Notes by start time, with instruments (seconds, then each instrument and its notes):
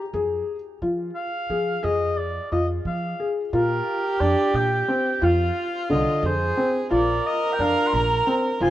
0.13 upright bass F2, felt piano G#4
0.82 upright bass F3, felt piano F4
1.15 oboe F5
1.50 upright bass F3, felt piano G#4
1.83 upright bass F2, felt piano G#4, oboe D#5
2.17 oboe D5
2.52 upright bass F2, felt piano F4, oboe D#5
2.85 upright bass F3, oboe F5
3.19 felt piano G#4
3.52 upright bass A#2, felt piano F4, viola G4, oboe A#4
4.20 upright bass F2, felt piano D4, oboe D5
4.54 upright bass A#2, oboe G5
4.88 felt piano C4
5.22 upright bass F2, felt piano F4, viola F4, oboe F5
5.90 upright bass C2, felt piano D3, oboe D#5
6.23 upright bass F2, viola G#4, oboe C5
6.57 felt piano C4
6.91 upright bass A#1, felt piano F4, viola A#4, oboe D5
7.26 oboe D#5
7.52 oboe G5
7.59 upright bass F2, felt piano D4, oboe F5
7.87 oboe C6
7.93 upright bass A#1, oboe A#5
8.27 felt piano C4
8.61 upright bass F1, felt piano F4, viola C5, oboe G#5